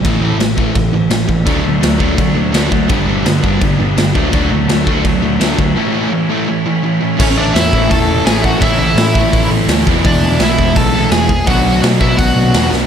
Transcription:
<<
  \new Staff \with { instrumentName = "Lead electric guitar" } { \time 4/4 \key a \major \tempo 4 = 168 << { r1 | r1 | r1 | r1 |
r1 | cis''8 d''8 e''4 a''4 gis''16. e''32 fis''8 | e''8 e''2 r4. | d''4 e''4 a''4 gis''4 |
fis''4 r8 e''8 fis''4. r8 | } \\ { r1 | r1 | r1 | r1 |
r1 | cis'8 d'8 e'4 a'4 gis'8 fis'8 | e'8 e'2 r4. | d'4 e'4 a'4 gis'4 |
fis'4 r8 e'8 fis'4. r8 | } >> }
  \new Staff \with { instrumentName = "Distorted electric guitar" } { \time 4/4 \key a \major r1 | <d fis a d'>8 <d fis a d'>8 <d fis a d'>8 <d fis a d'>8 <d fis a d'>8 <d fis a d'>8 <d fis a d'>8 <d fis a d'>8 | <g, d g b d'>8 <g, d g b d'>8 <g, d g b d'>8 <g, d g b d'>8 <g, d g b d'>8 <g, d g b d'>8 <g, d g b d'>8 <d fis a d'>8 | <d fis a d'>8 <d fis a d'>8 <d fis a d'>8 <d fis a d'>8 <d fis a d'>8 <d fis a d'>8 <d fis a d'>8 <d fis a d'>8 |
<a, e a cis' e'>8 <a, e a cis' e'>8 <a, e a cis' e'>8 <a, e a cis' e'>8 <a, e a cis' e'>8 <a, e a cis' e'>8 <a, e a cis' e'>8 <a, e a cis' e'>8 | <a, e a cis' e'>4. <a, e a cis' e'>4. <a, e a cis' e'>4 | <a, e a cis' e'>4. <a, e a cis' e'>4. <a, e a cis' e'>8 <e gis b e'>8~ | <e gis b e'>4 <e gis b e'>4. <e gis b e'>4 r8 |
<b, fis b d' fis'>4. <b, fis b d' fis'>4. <b, fis b d' fis'>4 | }
  \new Staff \with { instrumentName = "Distorted electric guitar" } { \clef bass \time 4/4 \key a \major <a, e a>8 <a, e a>8 <a, e>8 <a, e a>8 <a, e>8 <a, e>8 <a, e>8 <a, e>8 | <d fis a>8 <d fis>8 <d fis>8 <d fis a>8 <d fis>8 <d fis>8 <d fis a>8 <d fis>8 | <g, d g>8 <g, d g>8 <g, d>8 <g, d g>8 <g, d>8 <g, d>8 <g, d>8 <d fis a>8 | <d fis a>8 <d fis>8 <d fis>8 <d fis a>8 <d fis>8 <d fis>8 <d fis a>8 <d fis>8 |
<a, e a>8 <a, e a>8 <a, e>8 <a, e a>8 <a, e>8 <a, e>8 <a, e>8 <a, e>8 | <a, e a cis' e'>1 | <a, e a cis' e'>2.~ <a, e a cis' e'>8 <e gis b e'>8~ | <e gis b e'>2.~ <e gis b e'>8 r8 |
<b, fis b d' fis'>1 | }
  \new Staff \with { instrumentName = "Overdriven electric guitar" } { \clef bass \time 4/4 \key a \major <a, e a>8 <a, e a>8 <a, e>8 <a, e a>8 <a, e>8 <a, e>8 <a, e>8 <a, e>8 | <d a d'>8 <d a>8 <d a>8 <d a d'>8 <d a>8 <d a>8 <d a d'>8 <d a>8 | <g, d g>8 <g, d g>8 <g, d>8 <g, d g>8 <g, d>8 <g, d>8 <g, d>8 <d a d'>8 | <d a d'>8 <d a>8 <d a>8 <d a d'>8 <d a>8 <d a>8 <d a d'>8 <d a>8 |
<a, e a>8 <a, e a>8 <a, e>8 <a, e a>8 <a, e>8 <a, e>8 <a, e>8 <a, e>8 | <a, e a>4. <a, e a>4. <a, e a>4 | <a, e a>4. <a, e a>4. <a, e a>8 <e, b, e>8~ | <e, b, e>4 <e, b, e>4. <e, b, e>4 r8 |
<b, fis b>4. <b, fis b>4. <b, fis b>4 | }
  \new Staff \with { instrumentName = "Picked electric bass" } { \clef bass \time 4/4 \key a \major a,,8 a,,8 a,,8 a,,8 a,,8 a,,8 a,,8 a,,8 | d,8 d,8 d,8 d,8 d,8 d,8 d,8 d,8 | g,,8 g,,8 g,,8 g,,8 g,,8 g,,8 g,,8 d,8 | d,8 d,8 d,8 d,8 d,8 d,8 d,8 d,8 |
r1 | a,,8 a,,8 e,8 a,,8 e,,4 a,,4 | a,,8 a,,8 a,4 a,,8 a,,8 d,8 e,,8 | e,,8 e,,8 b,,8 e,,8 b,,4 e,,4 |
b,,8 b,,8 b,4 b,,8 b,,8 e,8 b,,8 | }
  \new DrumStaff \with { instrumentName = "Drums" } \drummode { \time 4/4 <cymc bd>4 <cymc sn>8 bd8 <cymc bd>4 <cymc sn>8 bd8 | <cymc bd>4 <cymc sn>8 bd8 <cymc bd>4 <cymc sn>8 bd8 | <cymc bd>4 <cymc sn>8 bd8 <cymc bd>4 <cymc sn>8 bd8 | <cymc bd>4 <cymc sn>8 bd8 <cymc bd>4 <cymc sn>8 bd8 |
r4 r4 r4 r4 | <cymc bd>4 <hho sn>8 bd8 <hho bd>4 <hho sn>8 bd8 | <hho bd>4 <hho sn>8 bd8 <hho bd>4 <hho sn>8 bd8 | <hho bd>4 <hho sn>8 bd8 <hho bd>4 <hho sn>8 bd8 |
<hho bd>4 <hho sn>8 bd8 <hho bd>4 <hho sn>8 sn8 | }
>>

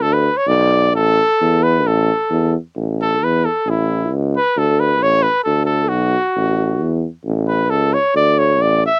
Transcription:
<<
  \new Staff \with { instrumentName = "Cornet" } { \time 2/4 \key a \major \tempo 4 = 133 a'16 b'8 cis''16 d''4 | a'4. b'8 | a'4. r8 | r8 a'8 b'8 a'8 |
e'4 r8 b'8 | a'8 b'8 cis''8 b'8 | a'8 a'8 fis'4~ | fis'4. r8 |
r8 b'8 a'8 cis''8 | d''8 cis''8 d''8 e''8 | }
  \new Staff \with { instrumentName = "Tuba" } { \clef bass \time 2/4 \key a \major d,4 b,,4 | a,,4 e,4 | a,,4 e,4 | a,,4 e,4 |
a,,4 cis,4 | d,4 a,,4 | d,4 b,,4 | a,,4 e,4 |
a,,4 cis,4 | d,4 a,,4 | }
>>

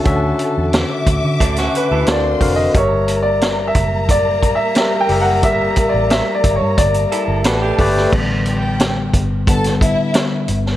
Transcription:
<<
  \new Staff \with { instrumentName = "String section" } { \time 4/4 \key a \mixolydian \tempo 4 = 89 <a' a''>4 <e'' d'''>2 <c'' c'''>4 | <bes bes''>1~ | <bes bes''>2. <a' a''>4 | r8 <g' g''>4 r8 <a' a''>8 <e' e''>4 r8 | }
  \new Staff \with { instrumentName = "Grand piano" } { \time 4/4 \key a \mixolydian a'4 r4. b'8 \tuplet 3/2 { d''4 ees''8 } | \tuplet 3/2 { cis''4 d''8~ d''8 e''4 d''4 e''8~ e''8 g''8 fis''8 } | \tuplet 3/2 { e''4 d''8 e''8 d''8 cis''8 } d''4 r4 | r1 | }
  \new Staff \with { instrumentName = "Tine electric piano" } { \time 4/4 \key a \mixolydian <d cis' fis' e''>2 r4 <d c' fis' ais' eis''>8 <d c' fis' ais' eis''>8 | <g g' bes' e''>2 r4 <g g' bes' e''>8 <g g' bes' e''>8 | <g g' bes' e''>2 r4 <a g' b' d''>8 <a g' b' d''>8 | <d g>2 <d g b>8 r4. | }
  \new Staff \with { instrumentName = "Clean electric guitar" } { \time 4/4 \key a \mixolydian r2 <a d'>16 <cis' fis'>8 <e' a'>8 r8. | r1 | r2 r8 <e' a'>8 <fis' b'>16 <d' g'>8. | r1 | }
  \new Staff \with { instrumentName = "Fingered electric bass" } { \clef bass \time 4/4 \key a \mixolydian d,8 r16 e,8 r16 d,16 d16 d,8 r16 d,16 d,8 eis,,8 | g,,4. fis,,4~ fis,,16 r8. fis,,8 | g,,8 r16 a,,8 r16 g,,16 g,16 g,,8 r16 g,,16 a,,8 g,,8 | a,,4. g,,4~ g,,16 r8. g,,8 | }
  \new DrumStaff \with { instrumentName = "Drums" } \drummode { \time 4/4 <hh bd>8 hh8 <hh sn>8 <hh bd>8 <hh bd>16 <hh sn>16 hh8 <hh sn>8 <hho bd>8 | <hh bd>8 hh8 <hh sn>8 <hh bd>8 <hh bd>8 <hh bd>8 <hh sn>8 hho8 | <hh bd>8 <hh bd>8 <hh sn>8 <hh bd>8 <hh bd>16 hh16 hh8 <hh sn>8 <hho bd>16 sn16 | <cymc bd>8 hh8 <hh sn>8 <hh bd>8 <hh bd>16 <hh sn>16 <hh bd>8 <hh sn>8 hh16 sn16 | }
>>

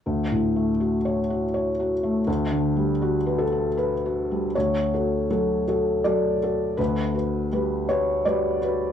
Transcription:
\new Staff \with { instrumentName = "Felt piano" } { \time 3/4 \key d \major \tempo 4 = 81 << { r2. | r4. a'8 b'4 | cis''2 d''4 | b'4. cis''8 d''4 | } \\ { \tuplet 3/2 { d,8 a,8 a8 fis'8 cis''8 fis'8 cis''8 fis'8 a8 } | \tuplet 3/2 { d,8 d8 g8 fis'8 b'8 fis'8~ fis'8 fis'8 g8 } | d,8 <fis' a'>8 <fis fis' a'>8 <fis' a'>8 <fis fis' a'>8 <fis' a'>8 | d,8 <fis' b'>8 <g fis' b'>8 <fis' b'>8 <g fis' b'>8 <fis' b'>8 | } >> }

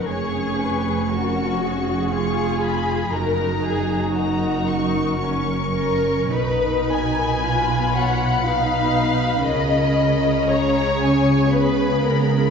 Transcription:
<<
  \new Staff \with { instrumentName = "Violin section" } { \time 3/4 \key cis \mixolydian \tempo 4 = 58 cis'''4 cis'''4 cis'''8 b''8 | ais''4 ais''8 cis'''8 cis'''4 | b''2.~ | b''4 ais''8 gis''8 b''4 | }
  \new Staff \with { instrumentName = "Violin section" } { \time 3/4 \key cis \mixolydian gis'4 fis'4 gis'4 | ais'8 gis'8 fis'4 r8 ais'8 | b'8 gis''4 fis''8 eis''4 | dis''4 cis''4 b'8 ais'8 | }
  \new Staff \with { instrumentName = "Viola section" } { \time 3/4 \key cis \mixolydian << { cis''8 b'8 ais'8 gis'4. | fis'4 ais'2~ | ais'4 b'8 cis''8 b'4 | ais'4 gis'4 gis'4 | } \\ { cis'4 cis'4 eis'4 | dis'2 cis'8 cis'8 | dis'4 eis'4 dis'4 | cis'2 b4 | } >> }
  \new Staff \with { instrumentName = "Cello section" } { \clef bass \time 3/4 \key cis \mixolydian eis,2. | fis,2. | b,2. | cis2. | }
  \new Staff \with { instrumentName = "Double bass section" } { \clef bass \time 3/4 \key cis \mixolydian eis,,2. | fis,,2. | b,,2. | cis,2. | }
>>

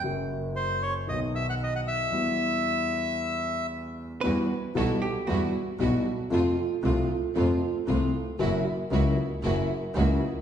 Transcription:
<<
  \new Staff \with { instrumentName = "Bandoneon" } { \time 4/4 \key e \minor \tempo 4 = 115 r4 c''8 cis''8 dis''8 e''16 fis''16 dis''16 fis''16 e''8~ | e''2. r4 | r1 | r1 |
r1 | }
  \new Staff \with { instrumentName = "Hollow-body jazz guitar" } { \time 4/4 \key e \minor r1 | r1 | b'4 a'8 g'8 fis'2 | r1 |
r1 | }
  \new Staff \with { instrumentName = "String section" } { \time 4/4 \key e \minor r1 | r1 | <g e' fis'>8 r8 <g e' fis'>8 r8 <g e' fis'>8 r8 <g e' fis'>8 r8 | <a c' f'>8 r8 <a c' f'>8 r8 <a c' f'>8 r8 <a c' f'>8 r8 |
<ais e' fis'>8 r8 <ais e' fis'>8 r8 <ais e' fis'>8 r8 <ais e' fis'>8 r8 | }
  \new Staff \with { instrumentName = "Grand piano" } { \clef bass \time 4/4 \key e \minor <fis, cis fis ais fis'>2 <b,, b, dis fis b fis'>2 | <e, e g b fis'>1 | <e, e g b fis'>8 r8 <b,, b, e g b fis'>8 r8 <e, e g b fis'>8 r8 <b,, b, e g b fis'>8 r8 | <f, c f a f'>8 r8 <c, c f a f'>8 r8 <f, c f a f'>8 r8 <c, c f a f'>8 r8 |
<fis, cis fis ais e'>8 r8 <cis, cis fis ais e'>8 r8 <fis, cis fis ais e'>8 r8 <cis, cis fis ais e'>8 r8 | }
  \new Staff \with { instrumentName = "Double bass" } { \clef bass \time 4/4 \key e \minor fis,,2 b,,2 | e,1 | e,8 r8 b,,8 r8 e,8 r8 b,,8 r8 | f,8 r8 c,8 r8 f,8 r8 c,8 r8 |
fis,,8 r8 cis,8 r8 fis,,8 r8 cis,8 r8 | }
>>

